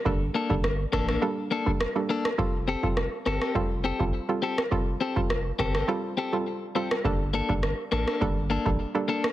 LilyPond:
<<
  \new Staff \with { instrumentName = "Clean electric guitar" } { \time 4/4 \key g \minor \tempo 4 = 103 r8 <bes d' a'>16 r8. <bes d' a'>16 <bes d' a'>16 r8 <bes d' a'>16 r8. <bes d' a'>16 r16 | r8 <c' g' a'>16 r8. <c' g' a'>16 <c' g' a'>16 r8 <c' g' a'>16 r8. <c' g' a'>16 r16 | r8 <c' g' a'>16 r8. <c' g' a'>16 <c' g' a'>16 r8 <c' g' a'>16 r8. <c' g' a'>16 r16 | r8 <bes d' a'>16 r8. <bes d' a'>16 <bes d' a'>16 r8 <bes d' a'>16 r8. <bes d' a'>16 r16 | }
  \new Staff \with { instrumentName = "Synth pluck" } { \time 4/4 \key g \minor <g bes d' a'>16 r8 <g bes d' a'>16 r4 <g bes d' a'>8. <g bes d' a'>16 r16 <g bes d' a'>16 r8 | <g c' f' a'>16 r8 <g c' f' a'>16 r4 <g c' f' a'>8. <g c' f' a'>16 r16 <g c' f' a'>16 r8 | <g c' f' a'>16 r8 <g c' f' a'>16 r4 <g c' f' a'>8. <g c' f' a'>8. <g c' f' a'>8 | <g bes d' a'>16 r8 <g bes d' a'>16 r4 <g bes d' a'>8. <g bes d' a'>16 r16 <g bes d' a'>16 r8 | }
  \new Staff \with { instrumentName = "Sub bass" } { \clef bass \time 4/4 \key g \minor g,,8 r16 g,,8. a,,8 r2 | f,,8. f,,8 r16 g,,16 r16 f,,8. g,,16 r4 | f,,8 r16 f,,8. g,,8 r2 | g,,8. g,,8 r16 a,,16 r16 g,,8. a,,16 r4 | }
  \new DrumStaff \with { instrumentName = "Drums" } \drummode { \time 4/4 bd8. bd16 ss8 <bd ss>16 ss16 r8. bd16 ss8. ss16 | bd8. bd16 ss8 ss16 ss16 bd8. bd16 r8. ss16 | bd8. bd16 ss8 <bd ss>16 ss16 r4 r8. ss16 | bd8. bd16 ss8 ss16 ss16 bd8. bd16 r8. ss16 | }
>>